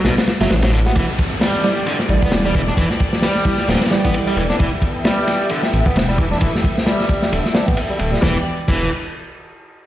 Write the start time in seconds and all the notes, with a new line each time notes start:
0.05 B1 B2, snare, ride
0.18 snare, ride
0.27 snare, ride
0.40 F#1 F#3 A3 F#4 E5, snare, ride
0.50 A1, snare, ride
0.62 F#3, snare, ride
0.73 D3, ride
0.86 A3 B3 F#4 F#5, snare
0.96 E1 E3 B3 G4 D5, kick, ride, downlifter
1.19 kick, ride
1.41 G3, snare, ride
1.64 G3 E4 D5, snare, ride
1.86 D3, ride
1.99 snare
2.09 A1 G3 E4 D5, ride
2.22 E1 B3, kick
2.32 E1, snare, ride
2.45 G3 E4 D5, ride
2.54 E3, kick, ride
2.67 D4, snare
2.77 E1 E3, kick, ride
2.90 snare
3.00 kick, ride
3.13 snare
3.22 G3, snare, ride
3.35 snare
3.45 G3 E4 D5, kick, ride
3.58 snare
3.68 D1 D3, snare, ride
3.75 snare, ride
3.81 snare, ride
3.86 snare, ride
3.90 G3 E4 D5, snare, ride
4.04 A1 B3, kick
4.14 ride
4.27 G3 E4 D5
4.36 E1 E3, ride
4.50 D4, snare
4.59 E1 E3 E5, kick, ride
4.82 kick, ride
5.05 G3, snare, ride
5.27 snare, ride
5.49 D3, ride
5.63 snare
5.73 A1, ride
5.86 E1 B3, kick
5.96 E1, snare, ride
6.09 G3, ride
6.18 E3, kick, ride
6.31 D4, snare
6.41 E1 E3, kick, ride
6.55 snare
6.64 kick, ride
6.78 snare
6.86 G3, snare, ride
7.00 snare
7.09 kick, ride
7.22 snare
7.32 D1 D3, ride
7.46 snare
7.54 D4, snare, ride
7.67 A1 B3, kick
7.77 ride
7.90 G3
7.99 D1 A3, ride
8.12 G3, snare
8.22 E1 E3 B3 G4 D5, kick, snare
8.68 E1 E3, kick, crash